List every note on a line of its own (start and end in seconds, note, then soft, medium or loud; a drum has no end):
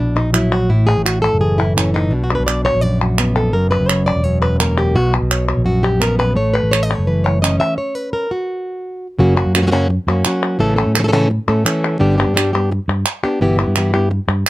0.00 0.70 A#1 medium
0.00 0.68 B2 medium
0.00 0.16 D4 medium
0.16 0.34 D#4 medium
0.33 0.67 F#3 medium
0.33 0.52 E4 medium
0.33 clap medium
0.52 0.70 F#4 loud
0.69 0.92 A1 medium
0.69 2.10 A2 medium
0.69 0.88 E4 medium
0.87 1.05 G#4 loud
0.97 1.27 A1 medium
1.06 1.22 F#4 medium
1.06 clap medium
1.22 1.40 A4 loud
1.33 2.12 F#1 medium
1.41 1.76 E3 medium
1.41 1.59 G#4 medium
1.58 1.76 E4 medium
1.77 2.12 E3 medium
1.77 1.94 C#4 medium
1.77 clap medium
1.94 2.12 D#4 medium
2.11 2.34 B1 medium
2.11 2.83 B2 medium
2.11 2.23 D4 medium
2.24 2.35 F#4 medium
2.31 3.53 D4 soft
2.31 2.46 B4 medium
2.39 2.68 B1 medium
2.47 2.64 D5 loud
2.47 clap medium
2.65 2.81 C#5 loud
2.75 3.54 A#1 medium
2.81 3.53 F#2 medium
2.81 3.00 D5 loud
3.03 3.35 F#4 soft
3.18 3.52 B3 medium
3.18 clap medium
3.36 3.54 A4 medium
3.53 3.76 F#1 medium
3.53 4.23 F#2 medium
3.53 3.70 A#4 medium
3.71 3.88 B4 loud
3.81 4.10 F#1 medium
3.88 4.06 C#5 medium
3.88 clap medium
4.06 4.24 D5 loud
4.16 4.95 E1 medium
4.24 4.95 F#2 medium
4.24 4.41 C#5 medium
4.42 4.60 B4 medium
4.60 4.93 A#3 medium
4.60 4.78 A#4 medium
4.60 clap medium
4.78 4.96 G4 medium
4.94 5.18 B1 medium
4.94 5.66 B2 medium
4.94 5.13 F#4 medium
5.22 5.51 B1 medium
5.31 5.48 C#5 medium
5.31 clap medium
5.48 5.65 C#5 soft
5.57 6.36 A#1 medium
5.65 6.36 F#2 medium
5.65 5.84 F#4 medium
5.83 6.01 G4 medium
6.00 6.34 B3 medium
6.00 6.19 A#4 medium
6.00 clap medium
6.19 6.36 B4 medium
6.35 6.58 A1 loud
6.35 7.75 A3 medium
6.35 6.54 C#5 loud
6.54 6.72 B4 loud
6.63 6.93 A1 medium
6.71 6.83 C#5 loud
6.71 clap medium
6.83 6.95 D#5 loud
6.89 7.06 B4 medium
6.95 7.58 F#1 medium
6.95 7.07 C#5 medium
7.07 7.76 E3 medium
7.07 7.25 B4 medium
7.24 7.42 C#5 loud
7.42 7.76 C#4 medium
7.42 7.60 D#5 loud
7.42 clap loud
7.60 7.77 E5 loud
7.78 7.95 C#5 medium
7.95 8.13 B4 loud
8.13 8.30 A#4 medium
8.31 9.06 F#4 medium
9.19 9.41 F#1 loud
9.19 9.36 C#3 medium
9.19 9.36 F#3 medium
9.19 9.36 A#3 medium
9.19 9.36 C#4 medium
9.19 9.35 F#4 medium
9.37 9.54 A#3 medium
9.37 9.54 C#4 medium
9.37 9.54 F#4 medium
9.46 9.97 F#2 medium
9.55 9.61 A#3 medium
9.55 9.62 C#4 medium
9.55 9.62 F#4 medium
9.55 clap medium
9.62 9.65 F#3 medium
9.62 9.66 A#3 medium
9.62 9.66 C#4 medium
9.62 9.67 F#4 medium
9.66 9.71 F#3 medium
9.66 9.70 A#3 medium
9.66 9.71 C#4 medium
9.66 9.71 F#4 medium
9.71 9.88 C#3 medium
9.71 9.89 F#3 medium
9.71 9.89 A#3 loud
9.71 9.89 C#4 loud
9.71 9.89 F#4 medium
9.89 muted nylon-string guitar stroke medium
10.07 10.22 F#2 loud
10.07 10.25 A#3 soft
10.07 10.25 C#4 medium
10.07 10.24 F#4 medium
10.25 10.59 F#3 medium
10.25 10.60 A#3 medium
10.25 10.59 C#4 medium
10.25 10.60 F#4 medium
10.25 clap loud
10.59 10.82 A1 loud
10.59 10.76 C#3 medium
10.59 10.77 E3 medium
10.59 10.77 A3 medium
10.59 10.76 C#4 medium
10.59 10.75 A4 medium
10.76 10.95 A3 medium
10.76 10.94 C#4 medium
10.76 10.94 A4 medium
10.86 11.38 A2 medium
10.95 10.98 A3 medium
10.95 10.98 C#4 medium
10.95 10.98 A4 medium
10.95 clap medium
10.99 11.02 E3 medium
10.99 11.03 A3 medium
10.99 11.03 C#4 medium
10.99 11.03 A4 medium
11.03 11.06 E3 medium
11.03 11.07 A3 medium
11.03 11.07 C#4 medium
11.03 11.08 A4 medium
11.07 11.11 E3 medium
11.07 11.12 A3 medium
11.07 11.12 C#4 medium
11.07 11.12 A4 medium
11.12 11.29 C#3 loud
11.12 11.29 E3 medium
11.12 11.30 A3 loud
11.12 11.30 C#4 loud
11.12 11.30 A4 loud
11.30 muted nylon-string guitar stroke medium
11.48 11.63 A2 loud
11.48 11.64 A3 medium
11.48 11.65 C#4 medium
11.48 11.65 A4 medium
11.65 11.99 E3 medium
11.65 12.00 A3 medium
11.65 12.00 C#4 medium
11.65 12.00 A4 medium
11.65 clap medium
11.99 12.23 G1 loud
11.99 12.17 D3 medium
11.99 12.17 G3 medium
11.99 12.17 B3 medium
11.99 12.17 D4 medium
11.99 12.16 G4 medium
12.18 12.34 B3 soft
12.18 12.35 D4 medium
12.18 12.35 G4 medium
12.27 12.78 G2 medium
12.34 12.52 G3 medium
12.34 12.52 B3 medium
12.34 12.53 D4 medium
12.34 12.52 G4 medium
12.34 clap medium
12.53 12.71 B3 soft
12.53 12.71 D4 medium
12.53 12.70 G4 medium
12.71 muted nylon-string guitar stroke medium
12.88 13.03 G2 loud
13.06 clap loud
13.23 13.41 B3 medium
13.23 13.41 D4 medium
13.23 13.40 G4 medium
13.41 13.63 G1 loud
13.41 13.58 B2 medium
13.41 13.58 E3 medium
13.41 13.58 B3 medium
13.41 13.58 E4 medium
13.41 13.58 G4 medium
13.59 13.76 B3 soft
13.59 13.76 G4 medium
13.67 14.18 G2 medium
13.76 13.93 E3 medium
13.76 13.93 B3 medium
13.76 13.93 E4 medium
13.76 13.92 G4 medium
13.76 clap medium
13.94 14.10 B3 medium
13.94 14.10 E4 medium
13.94 14.10 G4 medium
14.10 muted nylon-string guitar stroke medium
14.28 14.43 G2 loud
14.46 clap loud